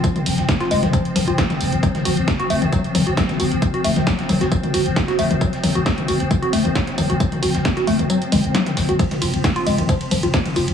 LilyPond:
<<
  \new Staff \with { instrumentName = "Synth arpeggio sound" } { \clef bass \time 4/4 \key c \phrygian \tempo 4 = 134 f16 r4 f'16 aes16 r16 f16 r16 f16 f'16 f16 r8. | ges16 r16 ges'16 r8 ges'16 a16 r16 ges16 r16 ges16 ges'16 ges16 r16 ges'16 r16 | r16 ges'16 a16 r16 ges16 r16 ges16 ges'16 ges16 r16 ges'16 r8 ges'16 a16 r16 | ges16 r16 ges16 ges'16 ges16 r16 ges'16 r8 ges'16 a16 r16 ges16 r16 ges16 ges'16 |
ges16 r16 ges'16 r8 ges'16 a16 r16 ges16 r16 aes16 r16 ges16 r8 ges'16 | f16 r16 f'16 r8 f'16 aes16 r16 f16 r16 f16 f'16 f16 r16 f'16 r16 | }
  \new Staff \with { instrumentName = "Synth drone" } { \clef bass \time 4/4 \key c \phrygian <f c'>1~ | <f c'>1~ | <f c'>1~ | <f c'>1~ |
<f c'>1 | <f c'>1 | }
  \new Staff \with { instrumentName = "808-style bass" } { \clef bass \time 4/4 \key c \phrygian r8 f,,16 f,,16 r8 f,,16 f,,16 r8 f,,16 f,,16 r8 f,,16 f,,16 | r8 ges,,16 ges,,16 r8 ges,,16 ges,,16 r8 ges,,16 ges,,16 r8 ges,,16 ges,,16 | r8 ges,,16 ges,,16 r8 ges,,16 ges,,16 r8 ges,,16 ges,,16 r8 ges,,16 ges,,16 | r8 ges,,16 ges,,16 r8 ges,,16 ges,,16 r8 ges,,16 ges,,16 r8 ges,,16 ges,,16 |
r8 ges,,16 ges,,16 r8 ges,,16 ges,,16 r8 ges,,16 ges,,16 r8 ges,,16 ges,,16 | r8 f,,16 f,,16 r8 f,,16 f,,16 r8 f,,16 f,,16 r8 f,,16 f,,16 | }
  \new DrumStaff \with { instrumentName = "Drums" } \drummode { \time 4/4 <hh bd tamb>16 <hh toml>16 <hho tamb>16 <hh sn>16 <hh bd sn tamb toml>16 <hh sn>16 <hho tamb>16 <hh sn toml>16 <hh bd tamb>16 hh16 <hho tamb toml>16 hh16 <hh bd sn tamb>16 <hh sn toml>16 <hho tamb>16 hh16 | <hh bd tamb>16 <hh sn toml>16 <hho tamb>16 hh16 <hh bd sn tamb toml>16 hh16 <hho tamb>16 <hh toml>16 <hh bd tamb>16 hh16 <hho tamb toml>16 hh16 <hh bd sn tamb>16 <hh sn toml>16 <hho tamb>16 hh16 | <hh bd tamb toml>16 hh16 <hho tamb>16 <hh sn toml>16 <hh bd sn tamb>16 <hh sn>16 <hho tamb toml>16 <hh sn>16 <hh bd tamb>16 <hh toml>16 <hho tamb>16 hh16 <hh bd sn tamb toml>16 <hh sn>16 <hho tamb>16 <hh toml>16 | <hh bd tamb>16 <hh sn>16 <hho tamb toml>16 hh16 <hh bd sn tamb>16 <hh toml>16 <hho tamb>16 hh16 <hh bd tamb toml>16 hh16 <hho tamb>16 <hh toml>16 <hh bd sn tamb>16 <hh sn>16 <hho tamb toml>16 hh16 |
<hh bd tamb>16 <hh toml>16 <hho tamb>16 <hh sn>16 <hh bd sn tamb toml>16 <hh sn>16 hho16 <hh toml>16 <hh tamb>16 hh16 <hho tamb toml>16 hh16 <hh sn tamb>16 <hh sn toml>16 <hho sn tamb>16 hh16 | <hh bd cymr tamb>16 <hh cymr sn toml>16 <hho cymr tamb>16 <hh cymr>16 <hh bd cymr sn tamb toml>16 <hh cymr>16 <hho cymr tamb>16 <hh cymr toml>16 <hh bd cymr tamb>16 <hh cymr>16 <hho cymr tamb toml>16 <hh cymr>16 <hh bd cymr sn tamb>16 <hh cymr sn toml>16 <hho cymr tamb>16 <hh cymr>16 | }
>>